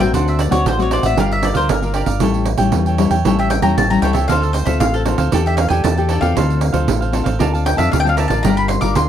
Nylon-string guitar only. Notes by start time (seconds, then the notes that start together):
Already playing: G2
0.00 A3 C4 F#4
0.14 D3
0.50 A3 C4 F#4
0.66 A2
0.79 A3 C4 F#4
1.16 G3 D4 F4 A#4
1.42 D4 F4 A#4
1.69 D3
1.82 D4 F4 A#4
2.20 A2 G3 C#4 E4
2.59 G3 C#4 E4
2.74 E3
2.98 G3 C#4 E4
3.25 A2 G3 C#4 E4
3.62 G3 C#4 E4
3.76 E3
3.90 G3 C#4 E4
4.14 C4 F4 A4
4.28 D3
4.66 C4 F4 A4
4.79 A2
5.06 C4 F4 A4
5.32 E3 D4 G4 A4
5.70 D4 G4 A4
5.85 E3
5.97 D4 G4 A4
6.21 C4 F4 A4
6.35 D3
6.73 C4 F4 A4
6.87 A2
7.12 C4 F4 A4
7.39 D3 C4 F4 A4
7.77 C4 F4 A4
7.91 D3
8.04 C4 F4 A4
8.29 D4 F4 A#4
8.44 G3
8.82 D4 F4 A#4
8.96 D3